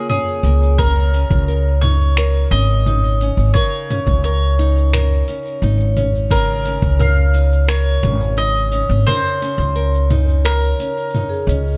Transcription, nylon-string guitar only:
0.00 0.78 C#3 medium
0.00 0.45 A#3 medium
0.00 0.79 F4 medium
0.10 0.86 C#4 medium
0.45 1.13 A#3 medium
0.79 3.54 C#3 medium
0.79 1.48 A#4 medium
1.13 2.52 C#4 medium
1.48 2.18 A#4 medium
1.83 2.86 D#4 medium
2.18 3.56 A#4 medium
2.52 3.22 C#4 medium
2.87 4.58 D#4 medium
3.22 3.91 C#4 medium
3.56 6.30 C#3 medium
3.56 4.24 A#4 medium
3.91 5.28 C#4 medium
4.25 4.93 A#4 medium
4.59 5.62 D#4 medium
4.93 6.31 A#4 medium
5.28 5.96 C#4 medium
5.63 7.32 D#4 medium
5.97 6.65 C#4 medium
6.31 9.06 C#3 medium
6.31 6.99 A#4 medium
6.66 8.02 C#4 medium
6.99 7.68 A#4 medium
7.34 8.36 D#4 medium
7.68 9.07 A#4 medium
8.03 8.71 C#4 medium
8.37 10.09 D#4 medium
8.72 9.41 C#4 medium
9.07 11.77 C#3 medium
9.07 9.75 A#4 medium
9.42 10.79 C#4 medium
9.76 10.44 A#4 medium
10.10 11.13 D#4 medium
10.45 11.77 A#4 medium
10.79 11.48 C#4 medium
11.14 11.77 D#4 medium
11.49 11.77 C#4 medium

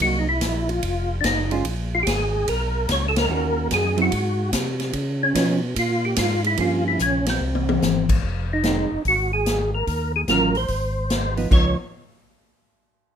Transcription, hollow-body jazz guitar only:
0.01 0.25 F#3 soft
0.01 0.25 A#3 medium
0.01 0.26 D#4 soft
1.51 1.63 G#3 medium
1.51 1.64 C#4 medium
1.51 1.64 F4 medium
3.30 3.92 D#3 soft
3.30 3.93 A#3 soft
3.30 3.93 C#4 soft
3.30 3.93 F#4 soft
3.96 4.09 F#3 medium
3.96 4.10 C4 medium
3.96 4.10 E4 medium
5.34 5.59 F3 medium
5.34 5.59 B3 medium
5.34 5.59 D#4 medium
6.58 7.21 F3 soft
6.58 7.21 A#3 medium
6.58 7.21 C#4 soft
8.64 8.88 D#3 soft
8.64 8.88 G#3 medium
8.64 8.89 C4 medium
10.28 10.53 D#3 soft
10.28 10.53 F#3 medium
10.28 10.53 C#4 medium
10.28 10.53 F4 medium
11.36 11.49 F3 soft
11.36 11.49 B3 medium
11.36 11.50 D#4 medium
11.50 11.75 F3 soft
11.50 11.75 B3 soft
11.50 11.76 D#4 medium

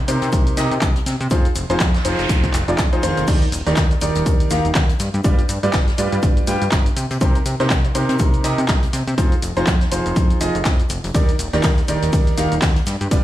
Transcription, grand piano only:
0.08 0.55 C3 medium
0.08 0.55 D#4 medium
0.08 0.55 G4 medium
0.08 0.55 A#4 medium
0.08 0.55 C5 medium
0.57 0.71 C3 medium
0.57 0.71 D#4 medium
0.57 0.71 G4 medium
0.57 0.71 A#4 medium
0.57 0.71 D#5 medium
1.31 1.45 F3 medium
1.31 1.45 D#4 medium
1.31 1.45 F4 medium
1.31 1.45 G#4 medium
1.31 1.45 C5 medium
1.70 1.80 F3 medium
1.70 1.80 D#4 medium
1.70 1.80 F4 medium
1.70 1.80 G#4 medium
1.70 1.80 C5 loud
2.05 2.51 F3 medium
2.05 2.51 D#4 medium
2.05 2.51 F4 medium
2.05 2.51 G#4 medium
2.05 2.51 C5 medium
2.68 2.78 F3 medium
2.68 2.78 D#4 medium
2.68 2.78 F4 medium
2.68 2.78 G#4 medium
2.68 2.78 D5 medium
2.93 3.02 F3 medium
2.93 3.02 D#4 medium
2.93 3.02 F4 medium
2.93 3.02 G#4 medium
2.93 3.02 C5 medium
3.03 3.25 D#3 medium
3.03 3.25 D#4 medium
3.03 3.25 F4 medium
3.03 3.25 G#4 medium
3.03 3.25 C5 loud
3.28 3.42 D#3 medium
3.28 3.42 D#4 medium
3.28 3.42 G4 medium
3.28 3.42 A#4 medium
3.28 3.42 D5 medium
3.66 3.77 D#3 medium
3.66 3.77 D#4 medium
3.66 3.77 G4 medium
3.66 3.77 A#4 medium
3.66 3.77 D5 loud
4.01 4.48 D#3 medium
4.01 4.48 D#4 medium
4.01 4.48 G4 medium
4.01 4.48 A#4 medium
4.01 4.48 D5 medium
4.51 4.65 D#3 medium
4.51 4.65 D#4 medium
4.51 4.65 G4 medium
4.51 4.65 A#4 medium
4.51 4.65 F5 medium
5.24 5.38 G3 medium
5.24 5.38 F4 medium
5.24 5.38 G4 medium
5.24 5.38 B4 medium
5.24 5.38 D5 medium
5.63 5.73 G3 medium
5.63 5.73 F4 medium
5.63 5.73 G4 medium
5.63 5.73 B4 medium
5.63 5.73 D5 loud
5.98 6.45 G3 medium
5.98 6.45 F4 medium
5.98 6.45 G4 medium
5.98 6.45 B4 medium
5.98 6.45 D5 medium
6.47 6.61 G3 medium
6.47 6.61 F4 medium
6.47 6.61 G4 medium
6.47 6.61 B4 medium
6.47 6.61 G5 medium
7.21 7.35 C3 medium
7.21 7.35 D#4 medium
7.21 7.35 G4 medium
7.21 7.35 A#4 medium
7.21 7.35 C5 medium
7.60 7.70 C3 medium
7.60 7.70 D#4 medium
7.60 7.70 G4 medium
7.60 7.70 A#4 medium
7.60 7.70 C5 loud
7.95 8.42 C3 medium
7.95 8.42 D#4 medium
7.95 8.42 G4 medium
7.95 8.42 A#4 medium
7.95 8.42 C5 medium
8.44 8.58 C3 medium
8.44 8.58 D#4 medium
8.44 8.58 G4 medium
8.44 8.58 A#4 medium
8.44 8.58 D#5 medium
9.18 9.32 F3 medium
9.18 9.32 D#4 medium
9.18 9.32 F4 medium
9.18 9.32 G#4 medium
9.18 9.32 C5 medium
9.57 9.67 F3 medium
9.57 9.67 D#4 medium
9.57 9.67 F4 medium
9.57 9.67 G#4 medium
9.57 9.67 C5 loud
9.92 10.38 F3 medium
9.92 10.38 D#4 medium
9.92 10.38 F4 medium
9.92 10.38 G#4 medium
9.92 10.38 C5 medium
10.41 10.55 F3 medium
10.41 10.55 D#4 medium
10.41 10.55 F4 medium
10.41 10.55 G#4 medium
10.41 10.55 D#5 medium
11.14 11.28 D#3 medium
11.14 11.28 D#4 medium
11.14 11.28 G4 medium
11.14 11.28 A#4 medium
11.14 11.28 D5 medium
11.53 11.64 D#3 medium
11.53 11.64 D#4 medium
11.53 11.64 G4 medium
11.53 11.64 A#4 medium
11.53 11.64 D5 loud
11.88 12.35 D#3 medium
11.88 12.35 D#4 medium
11.88 12.35 G4 medium
11.88 12.35 A#4 medium
11.88 12.35 D5 medium
12.37 12.51 D#3 medium
12.37 12.51 D#4 medium
12.37 12.51 G4 medium
12.37 12.51 A#4 medium
12.37 12.51 F5 medium
13.11 13.24 G3 medium
13.11 13.24 F4 medium
13.11 13.24 G4 medium
13.11 13.24 B4 medium
13.11 13.24 D5 medium

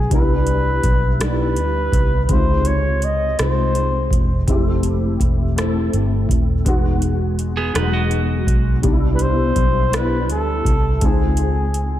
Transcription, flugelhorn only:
0.00 0.10 G#4 medium
0.14 1.18 B4 medium
1.23 2.25 B4 medium
2.25 2.33 B4 medium
2.32 2.69 C5 medium
2.67 3.06 C#5 medium
3.04 3.40 D#5 medium
3.41 4.17 C5 medium
9.15 9.23 B4 medium
9.22 9.97 C5 medium
9.95 10.30 B4 medium
10.31 11.07 A4 medium
11.05 12.00 G#4 medium

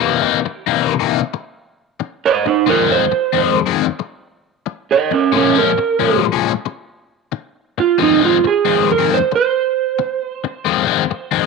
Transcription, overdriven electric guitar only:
0.00 0.20 C3 medium
0.00 0.20 E3 medium
0.00 0.21 A#3 medium
0.00 0.21 D#4 medium
0.21 0.38 C3 medium
0.21 0.38 E3 medium
0.21 0.38 A#3 medium
0.21 0.38 D#4 loud
0.45 muted overdriven electric guitar stroke medium
0.66 0.93 C3 medium
0.66 0.93 E3 medium
0.66 0.92 A#3 medium
0.66 0.92 D#4 loud
1.00 1.19 C3 medium
1.00 1.19 E3 medium
1.00 1.19 A#3 medium
1.00 1.19 D#4 medium
1.34 muted overdriven electric guitar stroke soft
2.00 muted overdriven electric guitar stroke soft
2.46 muted overdriven electric guitar stroke soft
2.66 2.86 F2 medium
2.66 2.87 D#3 medium
2.66 2.87 G#3 medium
2.66 2.88 C4 medium
2.87 3.03 F2 medium
2.87 3.04 D#3 medium
2.87 3.04 G#3 medium
2.87 3.04 C4 medium
3.11 muted overdriven electric guitar stroke soft
3.33 3.59 F2 medium
3.33 3.58 D#3 medium
3.33 3.58 G#3 medium
3.33 3.58 C4 medium
3.66 3.85 F2 medium
3.66 3.85 D#3 medium
3.66 3.85 G#3 medium
3.66 3.85 C4 medium
3.99 muted overdriven electric guitar stroke soft
4.66 muted overdriven electric guitar stroke soft
5.11 muted overdriven electric guitar stroke soft
5.32 5.53 A#2 medium
5.32 5.53 F3 medium
5.32 5.53 G#3 medium
5.32 5.54 C#4 medium
5.54 5.70 A#2 medium
5.54 5.70 F3 medium
5.54 5.70 G#3 medium
5.54 5.70 C#4 loud
5.78 muted overdriven electric guitar stroke soft
5.99 6.25 A#2 medium
5.99 6.25 F3 medium
5.99 6.24 G#3 medium
5.99 6.24 C#4 medium
6.32 6.51 A#2 medium
6.32 6.51 F3 medium
6.32 6.51 G#3 medium
6.32 6.51 C#4 medium
6.66 muted overdriven electric guitar stroke medium
7.32 muted overdriven electric guitar stroke soft
7.78 muted overdriven electric guitar stroke soft
7.98 8.19 F2 medium
7.98 8.19 D#3 medium
7.98 8.19 G#3 medium
7.98 8.20 C4 medium
8.20 8.36 F2 medium
8.20 8.36 D#3 medium
8.20 8.36 G#3 medium
8.20 8.36 C4 medium
8.44 muted overdriven electric guitar stroke soft
8.65 8.91 F2 medium
8.65 8.91 D#3 medium
8.65 8.90 G#3 medium
8.65 8.90 C4 loud
8.98 9.18 F2 medium
8.98 9.18 D#3 medium
8.98 9.17 G#3 medium
8.98 9.17 C4 medium
9.32 muted overdriven electric guitar stroke medium
9.99 muted overdriven electric guitar stroke soft
10.44 muted overdriven electric guitar stroke soft
10.65 10.85 F2 medium
10.65 10.86 D#3 medium
10.65 10.86 G#3 medium
10.65 10.86 C4 medium
10.86 11.02 F2 medium
10.86 11.03 D#3 medium
10.86 11.03 G#3 medium
10.86 11.03 C4 medium
11.11 muted overdriven electric guitar stroke soft
11.31 11.46 F2 medium
11.31 11.46 D#3 medium
11.31 11.46 G#3 medium
11.31 11.46 C4 loud

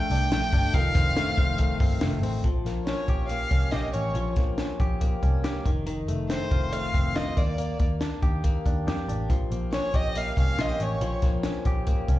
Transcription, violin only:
0.00 0.76 G5 medium
0.74 2.02 F5 loud
2.86 3.26 C#5 medium
3.29 3.73 F5 medium
3.71 3.92 D#5 medium
3.92 4.33 C#5 medium
6.30 6.74 C5 medium
6.73 7.17 F5 medium
7.15 7.39 D#5 medium
7.38 7.80 D5 medium
9.72 9.97 C#5 medium
9.95 10.19 D#5 medium
10.17 10.38 F5 medium
10.39 10.62 F5 medium
10.61 10.84 D#5 medium
10.83 11.24 C#5 medium

